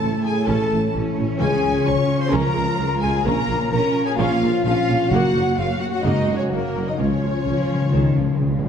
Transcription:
Already playing: A2 A3 C#4 E4 A4 C#5 A5
0.01 A1 E3 E4
0.18 E5
0.23 G#4 G#5
0.33 C#5
0.46 A1 E3 C#4 A4 A5
0.64 C#4
0.70 A1 A3
0.79 C#5
0.93 A1 E3 C#4 E4
1.10 E5
1.16 A1 A3
1.26 C#5
1.39 C#2 C#3 C#4 F4 G#4 G#5
1.58 C#4
1.63 C#2 G#3
1.73 C#5
1.85 C#2 F3 F4 C#5 C#6
2.03 F5
2.20 C5 C6
2.31 C#2 F3 C#4 A#4 A#5
2.51 G#3 C#4
2.56 C#2
2.67 C#5
2.78 C#2 F3 G#3
2.96 F5
3.00 C#2 G#3 G#4 G#5
3.11 C#5
3.24 A#1 A#2 A#3 C#4 A#4 A#5
3.41 C#4
3.48 A#1 A#3
3.56 C#5
3.71 A#1 F3 C#4 F4 A#4 A#5
3.86 F5
4.02 G#4 C#5 G#5
4.07 G#5
4.16 A#1 F3 A#3 C#4 F4 F5
4.32 C#4
4.41 A#1 A#3
4.48 C#5
4.63 A#1 F3 C#4 F4 F5
4.79 F5
4.88 A#1 A#3
4.95 C#5
5.09 F#1 F#2 A#3 F#4 F#5
5.13 A#3
5.26 C#4
5.33 F#1 F#3
5.56 F#1 C#3 F4 C#5 F5
5.79 F#4 F#5
5.89 F#4 C#5 F#5
5.93 F#5
6.02 F#1 C#3 G#3 A#3 D#4 D#5
6.20 C#4
6.27 F#1 F#3
6.34 C#4 A#4 C#5
6.50 F#1 C#3 F#3 A#3 A#4
6.67 F#5
6.75 F#1 F#3
6.83 C#5 D#5
6.88 D#4 D#5
6.98 C#2 C#3 F3 G#3 C#4 F4 C#5
7.13 C#3 C#4
7.21 C#2 F3
7.28 C#3 G#4
7.37 C#3
7.45 C#2 C#3 F3 C#5
7.53 C#3
7.60 C#3 F5
7.67 C#3
7.75 C#3 C#5
7.81 C#3
7.89 C#2 C#3 G#3
7.93 C#3 D#3
8.05 C#3 C#4
8.12 C#2 C#3
8.16 C#2 C#3 F3
8.22 G#4
8.26 C#3 F3
8.35 C#3
8.39 C#2 C#3 C#5
8.50 C#3 F5
8.59 C#3
8.63 C#2 F3

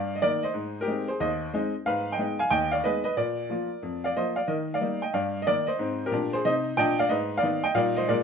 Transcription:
Already playing: G2 D5 F5
0.16 D#5
0.22 D#3 A#3 D#4 A#4 D5
0.43 C5 D#5
0.54 G#2
0.81 G4 A#4
0.88 G#3 C4 D#4
1.08 G#4 C5
1.20 D#2 C5 D#5
1.54 G#3 C4 D#4
1.86 G#2 B4 F5
2.12 D#5 G5
2.19 G#3 B3 D#4
2.39 F5 G#5
2.50 D#2 D#5 G5
2.72 D5 F5
2.84 G#3 B3 D#4 B4 D#5
3.04 B4 D#5
3.17 A#2 A#4 D5
3.50 F3 A#3 F4
3.83 F2
4.04 D5 F5
4.16 F3 A#3 F4 C5 D#5
4.36 D5 F5
4.48 D#3 A#4 D#5
4.74 D5 F5
4.81 G3 A#3 D#4
5.02 D#5 G5
5.14 G2 D5 F5
5.42 D#5
5.47 D#3 A#3 D#4 A#4 D5
5.67 C5 D#5
5.79 G#2 C4
6.06 G4 A#4
6.11 A#2 D4
6.33 G#4 C5
6.45 C3 D#4 C5 D#5
6.77 A#2 D4 D#5 G5
6.99 D5 F5
7.09 G#2 B4 D#5
7.38 D5 F5
7.43 D#3 B3 D#4
7.64 D#5 G5
7.75 A#2 G3 A#3 D#4 D5 F5
7.96 C5 D#5
8.09 A#2 G#3 A#3 F4 A#4 D5

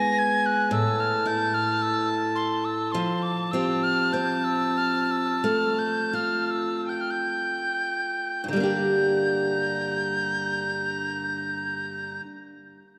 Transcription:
Already playing: G#3 B3 E4 G#4 G#5 A#6
0.18 G#6
0.46 F#6
0.70 A2 A5 E6
1.00 F6
1.26 E4 G6
1.54 F6
1.82 E6
2.35 C6
2.65 E6
2.92 F3 A5 C6
3.23 D6
3.51 C4 F4 G4 E6
3.83 F6
4.13 C4 G6
4.44 E6
4.77 F6
5.01 F6
5.11 E6
5.43 A3 F6
5.79 G6
6.13 F4 F6
6.51 E6
6.89 G5 G6
7.01 F6
7.11 G6
8.44 G2
8.48 D3 A#5 G6
8.53 G3 A#3
8.60 D4 G4

